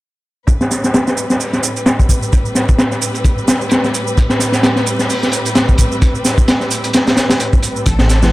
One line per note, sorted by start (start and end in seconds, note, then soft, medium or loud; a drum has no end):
0.47 8.32 A2 medium
0.47 8.32 G3 medium
0.47 8.32 C4 medium
0.47 7.85 B4 medium
0.47 kick loud
0.47 closed hi-hat medium
0.47 shaker soft
0.61 snare medium
0.61 shaker soft
0.71 snare soft
0.71 closed hi-hat medium
0.71 shaker medium
0.84 snare soft
0.84 shaker soft
0.94 snare loud
0.94 closed hi-hat medium
0.94 shaker soft
1.07 snare medium
1.07 shaker soft
1.17 closed hi-hat medium
1.17 shaker medium
1.30 snare soft
1.30 shaker soft
1.40 open hi-hat medium
1.40 shaker soft
1.53 snare soft
1.53 shaker soft
1.63 closed hi-hat medium
1.63 shaker medium
1.76 closed hi-hat soft
1.76 shaker soft
1.86 snare loud
1.86 closed hi-hat medium
1.86 shaker soft
1.99 kick medium
1.99 shaker soft
2.09 kick medium
2.09 closed hi-hat medium
2.09 shaker medium
2.23 shaker soft
2.33 kick medium
2.33 closed hi-hat medium
2.33 shaker soft
2.46 shaker soft
2.55 snare soft
2.55 closed hi-hat medium
2.55 shaker medium
2.69 kick medium
2.69 shaker soft
2.79 snare loud
2.79 closed hi-hat medium
2.79 shaker soft
2.92 snare soft
2.92 shaker soft
3.01 closed hi-hat medium
3.01 shaker medium
3.14 closed hi-hat soft
3.14 shaker soft
3.24 kick loud
3.24 closed hi-hat medium
3.24 shaker soft
3.38 shaker soft
3.48 snare loud
3.48 closed hi-hat medium
3.48 shaker medium
3.61 shaker soft
3.69 snare medium
3.69 closed hi-hat medium
3.69 shaker soft
3.84 snare soft
3.84 shaker soft
3.94 closed hi-hat medium
3.94 shaker medium
4.07 shaker soft
4.17 kick loud
4.17 closed hi-hat medium
4.17 shaker soft
4.30 snare medium
4.30 shaker soft
4.39 snare soft
4.39 closed hi-hat medium
4.39 shaker medium
4.52 snare soft
4.52 shaker soft
4.63 snare loud
4.63 closed hi-hat medium
4.63 shaker soft
4.76 snare medium
4.76 shaker soft
4.86 closed hi-hat medium
4.86 shaker medium
4.99 snare soft
4.99 shaker soft
5.10 open hi-hat medium
5.10 shaker soft
5.23 snare soft
5.23 shaker soft
5.32 closed hi-hat medium
5.32 shaker medium
5.45 closed hi-hat soft
5.45 shaker soft
5.55 snare loud
5.55 closed hi-hat medium
5.55 shaker soft
5.69 kick medium
5.69 shaker soft
5.78 kick medium
5.78 closed hi-hat medium
5.78 shaker medium
5.92 shaker soft
6.02 kick loud
6.02 closed hi-hat medium
6.02 shaker soft
6.15 shaker soft
6.25 snare soft
6.25 closed hi-hat medium
6.25 shaker medium
6.38 kick medium
6.38 shaker soft
6.48 snare loud
6.48 closed hi-hat medium
6.48 shaker soft
6.61 snare soft
6.61 shaker soft
6.71 closed hi-hat medium
6.71 shaker medium
6.84 closed hi-hat soft
6.84 shaker soft
6.93 snare medium
6.93 closed hi-hat medium
6.93 shaker soft
7.07 snare medium
7.07 closed hi-hat medium
7.07 shaker soft
7.17 snare medium
7.17 closed hi-hat medium
7.17 shaker medium
7.30 snare medium
7.30 closed hi-hat medium
7.30 shaker soft
7.40 closed hi-hat medium
7.40 shaker soft
7.53 kick medium
7.53 shaker soft
7.63 closed hi-hat medium
7.63 shaker medium
7.76 shaker soft
7.86 8.32 A1 medium
7.86 8.32 A4 medium
7.86 kick medium
7.86 closed hi-hat medium
7.86 shaker soft
7.99 8.22 A2 medium
7.99 snare medium
7.99 shaker soft
8.09 snare soft
8.09 closed hi-hat medium
8.09 shaker medium
8.22 8.32 E3 medium
8.22 snare soft
8.22 high conga medium
8.22 shaker soft